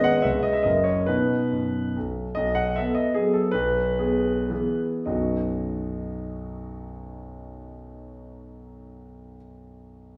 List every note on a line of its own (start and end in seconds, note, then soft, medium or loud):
0.00 0.24 G#1 medium
0.00 0.21 G#3 soft
0.00 0.22 B3 soft
0.00 0.22 B4 soft
0.00 0.27 D#5 medium
0.00 0.24 F#5 medium
0.22 0.64 C#2 soft
0.22 0.61 G#3 soft
0.22 0.61 C#4 soft
0.22 0.61 B4 soft
0.22 0.43 E5 medium
0.43 0.54 D#5 medium
0.53 0.64 E5 medium
0.63 1.05 F#1 soft
0.63 1.03 F#3 soft
0.63 1.03 C#4 soft
0.63 1.03 A#4 soft
0.63 0.85 D#5 medium
0.84 1.06 C#5 medium
1.06 1.39 B2 soft
1.06 1.44 D#4 soft
1.06 1.96 B4 medium
1.52 1.83 F#2 soft
1.96 2.25 B1 soft
2.35 2.76 B1 soft
2.35 2.55 D#5 medium
2.55 2.76 F#5 medium
2.76 3.12 B3 soft
2.76 3.13 A4 soft
2.76 2.96 E5 medium
2.95 3.15 D#5 medium
3.14 3.51 F#3 soft
3.14 3.51 B3 soft
3.14 3.34 G#4 medium
3.14 3.32 A4 soft
3.34 3.54 A4 medium
3.51 3.96 B1 medium
3.51 4.78 B4 medium
3.99 4.47 B3 soft
3.99 4.46 G#4 soft
4.50 5.03 E3 soft
4.50 5.04 B3 soft
4.50 5.04 G#4 soft
5.06 9.35 B1 soft
5.06 9.35 F#2 soft
5.06 9.36 F#3 soft
5.06 9.36 B3 soft
5.06 9.36 D#4 soft
5.06 9.37 F#4 soft
5.06 9.34 D#5 soft